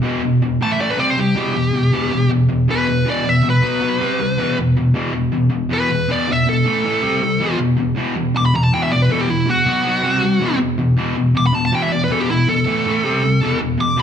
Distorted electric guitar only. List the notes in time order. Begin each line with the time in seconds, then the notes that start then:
0.02 E2 B2 E3
0.22 E2 B2
0.42 E2 B2
0.61 A2 E3 A3
0.80 A2 E3 A3
0.98 C3 G3 C4
1.17 C3 G3
1.35 E2 B2 E3
1.55 E2 B2
1.73 E2 B2
1.92 E2 B2 E3
2.11 E2 B2
2.30 E2 B2
2.49 E2 B2
2.68 E2 B2 E3
2.87 E2 B2
3.05 E2 B2 E3
3.25 E2 B2
3.43 E2 B2
3.62 B2 F#3 B3
3.80 B2 F#3 B3
4.00 C3 G3 C4
4.19 C3 G3
4.38 E2 B2 E3
4.57 E2 B2
4.77 E2 B2
4.94 E2 B2 E3
5.13 E2 B2
5.33 E2 B2
5.50 E2 B2
5.69 E2 B2 E3
5.89 E2 B2
6.08 E2 B2 E3
6.28 E2 B2
6.46 E2 B2
6.65 A2 E3 A3
6.84 A2 E3 A3
7.02 C3 G3 C4
7.22 C3 G3
7.40 E2 B2 E3
7.59 E2 B2
7.78 E2 B2
7.96 E2 B2 E3
8.17 E2 B2
8.35 E2 B2
8.54 E2 B2
8.72 E2 B2 E3
8.91 E2 B2
9.10 E2 B2 E3
9.28 E2 B2
9.46 E2 B2
9.65 B2 F#3 B3
9.84 B2 F#3 B3
10.03 C3 G3 C4
10.22 C3 G3
10.40 E2 B2 E3
10.59 E2 B2
10.78 E2 B2
10.97 E2 B2 E3
11.16 E2 B2
11.35 E2 B2
11.53 E2 B2
11.72 E2 B2 E3
11.91 E2 B2
12.09 E2 B2 E3
12.29 E2 B2
12.48 E2 B2
12.66 A2 E3 A3
12.87 A2 E3 A3
13.04 C3 G3 C4
13.23 C3 G3
13.41 E2 B2 E3
13.59 E2 B2
13.77 E2 B2
13.96 E2 B2 E3